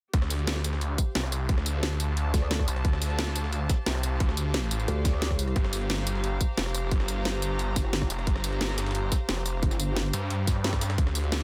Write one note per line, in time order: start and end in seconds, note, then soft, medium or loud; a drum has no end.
0.14 0.97 D2 loud
0.14 11.43 G4 medium
0.14 kick loud
0.14 closed hi-hat medium
0.22 cross-stick soft
0.22 snare medium
0.30 closed hi-hat loud
0.30 open hi-hat medium
0.30 tambourine medium
0.37 11.43 C5 medium
0.37 11.43 F5 medium
0.37 closed hi-hat soft
0.47 snare loud
0.47 closed hi-hat medium
0.56 snare soft
0.56 closed hi-hat soft
0.64 snare medium
0.64 closed hi-hat loud
0.64 closed hi-hat medium
0.64 tambourine medium
0.73 snare medium
0.81 closed hi-hat medium
0.81 tambourine soft
0.98 kick loud
0.98 closed hi-hat loud
0.98 closed hi-hat medium
0.98 tambourine medium
1.15 1.48 C2 loud
1.15 snare loud
1.15 closed hi-hat medium
1.24 cross-stick soft
1.24 snare soft
1.32 cross-stick soft
1.32 closed hi-hat medium
1.32 open hi-hat medium
1.32 tambourine medium
1.49 2.33 D2 loud
1.49 kick loud
1.49 closed hi-hat medium
1.55 5.56 A5 medium
1.55 cross-stick soft
1.55 snare medium
1.66 snare soft
1.66 closed hi-hat loud
1.66 closed hi-hat medium
1.66 tambourine medium
1.83 snare loud
1.83 closed hi-hat medium
1.92 closed hi-hat soft
2.00 closed hi-hat loud
2.00 closed hi-hat medium
2.00 tambourine medium
2.17 closed hi-hat medium
2.17 tambourine soft
2.34 2.66 D2 loud
2.34 kick loud
2.34 snare soft
2.34 closed hi-hat loud
2.34 closed hi-hat medium
2.34 tambourine medium
2.42 cross-stick soft
2.51 snare loud
2.51 closed hi-hat medium
2.59 kick medium
2.59 cross-stick soft
2.59 snare medium
2.68 2.83 C2 loud
2.68 closed hi-hat medium
2.68 open hi-hat medium
2.68 tambourine medium
2.76 cross-stick soft
2.76 closed hi-hat soft
2.85 3.68 D2 loud
2.85 kick loud
2.85 closed hi-hat medium
2.93 cross-stick soft
2.93 snare medium
3.02 closed hi-hat medium
3.02 open hi-hat medium
3.02 tambourine medium
3.10 closed hi-hat soft
3.19 snare loud
3.19 closed hi-hat medium
3.27 snare soft
3.27 closed hi-hat soft
3.36 snare medium
3.36 closed hi-hat medium
3.36 tambourine medium
3.44 snare medium
3.53 closed hi-hat medium
3.53 tambourine soft
3.69 kick loud
3.69 snare loud
3.69 closed hi-hat medium
3.69 tambourine medium
3.86 4.19 C2 loud
3.86 snare loud
3.86 closed hi-hat medium
3.95 cross-stick soft
3.95 snare soft
4.03 cross-stick soft
4.03 closed hi-hat medium
4.03 open hi-hat medium
4.03 tambourine medium
4.20 4.70 D2 loud
4.20 kick loud
4.20 closed hi-hat medium
4.29 cross-stick soft
4.29 snare medium
4.37 snare soft
4.37 closed hi-hat medium
4.37 tambourine medium
4.54 snare loud
4.54 closed hi-hat medium
4.63 closed hi-hat soft
4.71 4.87 A1 loud
4.71 snare soft
4.71 closed hi-hat medium
4.71 tambourine medium
4.80 tambourine soft
4.88 5.35 D2 medium
4.88 closed hi-hat medium
4.88 tambourine soft
5.05 kick loud
5.05 snare soft
5.05 closed hi-hat medium
5.05 tambourine medium
5.13 cross-stick soft
5.22 snare loud
5.22 closed hi-hat medium
5.30 kick medium
5.30 cross-stick soft
5.30 snare medium
5.35 5.55 C#2 medium
5.35 closed hi-hat medium
5.35 open hi-hat medium
5.35 tambourine medium
5.47 cross-stick soft
5.47 closed hi-hat soft
5.56 6.39 G1 loud
5.56 kick loud
5.56 closed hi-hat medium
5.64 cross-stick soft
5.64 snare medium
5.73 10.98 A#5 medium
5.73 closed hi-hat loud
5.73 open hi-hat medium
5.73 tambourine medium
5.81 closed hi-hat soft
5.90 snare loud
5.90 closed hi-hat medium
5.98 snare soft
5.98 closed hi-hat soft
6.07 snare medium
6.07 closed hi-hat medium
6.07 tambourine medium
6.15 snare medium
6.24 closed hi-hat medium
6.24 tambourine soft
6.41 kick loud
6.41 closed hi-hat medium
6.41 tambourine medium
6.58 6.90 F1 loud
6.58 snare loud
6.58 closed hi-hat medium
6.66 cross-stick soft
6.66 snare soft
6.74 cross-stick soft
6.74 closed hi-hat medium
6.74 open hi-hat medium
6.74 tambourine medium
6.91 7.75 G1 loud
6.91 kick loud
6.91 closed hi-hat medium
7.00 cross-stick soft
7.00 snare medium
7.08 snare soft
7.08 closed hi-hat medium
7.08 tambourine medium
7.25 snare loud
7.25 closed hi-hat medium
7.34 closed hi-hat soft
7.42 closed hi-hat medium
7.42 tambourine medium
7.59 closed hi-hat medium
7.59 tambourine soft
7.76 8.09 G1 loud
7.76 kick loud
7.76 snare soft
7.76 closed hi-hat medium
7.76 tambourine medium
7.85 cross-stick soft
7.93 snare loud
7.93 closed hi-hat medium
8.02 kick medium
8.02 cross-stick soft
8.02 snare medium
8.10 8.26 F1 loud
8.10 closed hi-hat medium
8.10 open hi-hat medium
8.10 tambourine medium
8.19 cross-stick soft
8.19 closed hi-hat soft
8.27 9.10 G1 loud
8.27 kick loud
8.27 closed hi-hat medium
8.35 cross-stick soft
8.35 snare medium
8.44 closed hi-hat loud
8.44 open hi-hat medium
8.44 tambourine medium
8.53 closed hi-hat soft
8.61 snare loud
8.61 closed hi-hat medium
8.69 snare soft
8.69 closed hi-hat soft
8.78 snare loud
8.78 closed hi-hat loud
8.78 closed hi-hat medium
8.78 tambourine medium
8.86 snare medium
8.86 closed hi-hat medium
8.91 snare medium
8.91 closed hi-hat medium
8.95 closed hi-hat medium
8.95 tambourine soft
9.12 kick loud
9.12 snare loud
9.12 closed hi-hat medium
9.12 tambourine medium
9.29 9.61 F1 loud
9.29 snare loud
9.29 closed hi-hat medium
9.37 cross-stick soft
9.37 snare soft
9.46 cross-stick soft
9.46 closed hi-hat medium
9.46 open hi-hat medium
9.46 tambourine medium
9.63 10.12 G1 loud
9.63 kick loud
9.63 closed hi-hat medium
9.71 cross-stick soft
9.71 snare medium
9.71 tambourine soft
9.80 snare soft
9.80 closed hi-hat loud
9.80 closed hi-hat medium
9.80 tambourine medium
9.96 snare loud
9.96 closed hi-hat medium
10.05 closed hi-hat soft
10.13 10.29 G2 loud
10.13 snare soft
10.13 closed hi-hat loud
10.13 closed hi-hat medium
10.13 tambourine medium
10.30 10.97 G2 medium
10.30 closed hi-hat medium
10.30 tambourine soft
10.47 kick loud
10.47 snare soft
10.47 closed hi-hat loud
10.47 closed hi-hat medium
10.47 tambourine medium
10.56 cross-stick soft
10.64 snare loud
10.64 closed hi-hat medium
10.73 kick medium
10.73 cross-stick soft
10.73 snare loud
10.73 closed hi-hat medium
10.81 snare loud
10.81 closed hi-hat medium
10.81 open hi-hat medium
10.81 tambourine medium
10.90 cross-stick soft
10.90 snare loud
10.90 closed hi-hat medium
10.98 11.43 D2 loud
10.98 kick loud
10.98 closed hi-hat medium
11.07 cross-stick soft
11.07 snare medium
11.15 closed hi-hat loud
11.15 open hi-hat medium
11.15 tambourine medium
11.24 closed hi-hat soft
11.32 snare loud
11.32 closed hi-hat medium